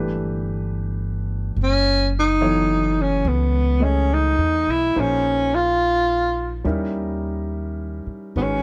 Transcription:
0.00 1.54 G1 medium
0.00 1.58 E3 soft
0.00 1.58 A3 soft
0.00 1.58 D4 soft
0.00 1.58 G4 soft
0.00 1.58 B4 soft
1.56 3.21 F#1 medium
1.63 2.12 C#4 medium
2.19 3.03 D#4 medium
2.41 4.95 E3 soft
2.41 4.94 F#3 medium
2.41 4.95 B3 soft
2.41 4.95 A4 soft
2.41 4.95 C#5 medium
3.02 3.29 C#4 medium
3.25 4.34 C#2 medium
3.25 3.84 B3 medium
3.80 4.94 A3 soft
3.80 4.15 C#4 medium
3.80 4.95 G#4 soft
3.80 4.95 D#5 soft
4.14 4.72 D#4 medium
4.38 4.64 E2 medium
4.67 4.93 B1 medium
4.67 5.01 E4 medium
4.95 6.61 A#1 medium
4.95 6.64 F3 soft
4.95 6.65 A#3 soft
4.95 6.64 D#4 soft
4.95 6.65 G#4 soft
4.95 6.65 C5 soft
5.00 5.56 C#4 medium
5.55 6.66 F4 medium
6.64 8.03 D#2 medium
6.64 8.35 G3 medium
6.64 8.35 C#4 soft
6.64 8.35 D#4 soft
6.64 8.36 E4 soft
6.64 8.36 A#4 soft
8.06 muted upright bass stroke soft
8.36 8.63 G#1 medium
8.36 8.63 D#3 soft
8.36 8.63 G#3 soft
8.36 8.44 B3 medium
8.36 8.63 C#4 soft
8.36 8.63 F#4 soft
8.36 8.63 B4 soft
8.42 8.63 C#4 medium

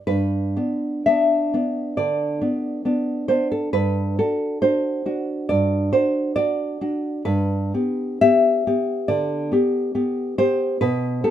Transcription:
0.07 0.55 G2 medium
0.07 1.03 B4 loud
0.57 1.05 B3 medium
0.57 1.06 D4 medium
1.06 1.53 B3 medium
1.06 1.53 D4 medium
1.06 1.93 E5 loud
1.54 2.40 B3 medium
1.54 2.40 D4 medium
1.97 2.40 D3 medium
1.97 3.26 D5 medium
2.41 2.84 B3 medium
2.41 2.84 D4 medium
2.85 3.28 B3 medium
2.85 3.28 D4 medium
3.28 3.69 B3 medium
3.28 3.70 D4 medium
3.28 3.51 C5 loud
3.52 3.73 A4 medium
3.73 4.17 G2 medium
3.73 4.16 B4 loud
4.19 4.61 D4 soft
4.19 4.61 F#4 medium
4.19 4.61 A4 medium
4.62 5.04 D4 medium
4.62 5.05 F#4 medium
4.62 5.45 C5 loud
5.06 5.92 D4 medium
5.06 5.92 F#4 medium
5.49 5.91 G2 medium
5.49 5.90 D5 loud
5.93 6.36 D4 medium
5.93 6.36 F#4 medium
5.93 6.34 C5 loud
6.36 6.80 D4 medium
6.36 6.81 F#4 medium
6.36 7.21 D5 loud
6.81 7.22 D4 medium
6.81 7.22 F#4 medium
7.25 7.72 G2 medium
7.25 8.17 B4 loud
7.74 8.21 B3 medium
7.74 8.21 G4 medium
8.21 8.66 B3 medium
8.21 8.66 G4 medium
8.21 9.06 E5 loud
8.67 9.50 B3 medium
8.67 9.51 G4 medium
9.08 9.50 D3 medium
9.08 10.33 D5 medium
9.52 9.93 B3 medium
9.52 9.94 G4 medium
9.95 10.37 B3 medium
9.95 10.38 G4 medium
10.38 10.77 B3 medium
10.38 10.78 G4 medium
10.38 10.80 C5 loud
10.81 11.22 B2 medium
10.81 11.22 B4 loud
11.24 11.30 B3 medium
11.24 11.30 G4 medium
11.24 11.30 A4 medium

